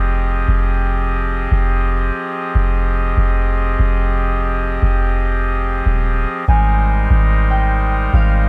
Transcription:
Already playing: F1 F3 C4 G4 G#4 D#5
0.48 F1
1.51 F1
2.55 F1
3.17 F1
3.79 F1
4.82 F1
5.86 D#1
6.48 G#1 G3 G#3 D#4 A#4 C5 G#5
7.10 G#1
7.51 G5
8.13 G#1 F5

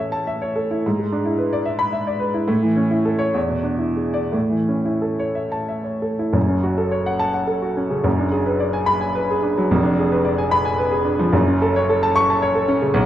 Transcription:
Already playing: A2 E3 C#4 E4 A4 C#5 E5
0.12 A5
0.27 E5
0.42 C#5
0.56 A4
0.71 E4
0.86 G#2
0.99 G#3
1.12 D4
1.25 E4
1.38 B4
1.53 D5
1.65 E5
1.79 B5
1.93 E5
2.07 D5
2.19 B4
2.34 E4
2.48 A2
2.63 E3
2.77 C#4
2.91 E4
3.05 A4
3.19 C#5
3.34 E2
3.49 B2
3.63 D4
3.78 E4
3.96 G#4
4.14 D5
4.32 A2
4.50 E3
4.69 C#4
4.85 E4
5.02 A4
5.19 C#5
5.35 E5
5.52 A5
5.68 E5
5.84 C#5
6.02 A4
6.19 E4
6.33 F#1 F#2
6.49 C#4
6.63 F#4
6.78 A4
6.92 C#5
7.06 F#5
7.19 A5
7.34 F#5
7.47 A4
7.62 F#4
7.77 C#4
7.90 C#3
8.04 F#1 F#2
8.19 D4
8.32 G#4
8.46 B4
8.60 D5
8.73 G#5
8.86 B5
9.01 G#5
9.15 B4
9.31 G#4
9.42 D4
9.57 F#3
9.70 F1 F2
9.83 D4
9.98 G#4
10.12 B4
10.25 D5
10.38 G#5
10.51 B5
10.65 G#5
10.78 B4
10.92 G#4
11.05 D4
11.19 F3
11.33 F#1 F#2
11.47 C#4
11.62 A4
11.76 C#5
11.89 A4
12.03 A5
12.16 C#6
12.30 A5
12.42 C#5
12.55 A4
12.68 C#4
12.82 C#3
12.94 B1

